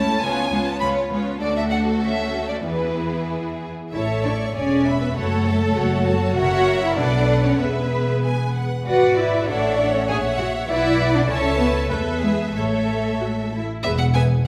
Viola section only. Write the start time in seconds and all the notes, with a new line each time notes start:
Already playing: A3 C#4
0.23 B3 C#4
0.52 B3 C#4
0.82 B3 C#4
1.11 B3 C#4
1.41 A3 D4
2.02 C#4
2.65 E3 B3
3.93 A4 C#5
4.25 A4 C#5
4.56 G#4 D5
4.86 B4 E5
5.15 F#4 C#5
5.47 A4
5.77 F#4 C#5
6.06 A4
6.38 A#4 C#5
6.97 A4 B4
7.60 G#4 B4
8.87 B4 D5
9.48 A4 C#5
10.10 C#5
10.69 B4 D5
11.29 A4 C#5
11.91 B4
12.55 A4 C#5
13.20 F#4
13.53 E4
13.85 B3 G#4
14.15 B3 G#4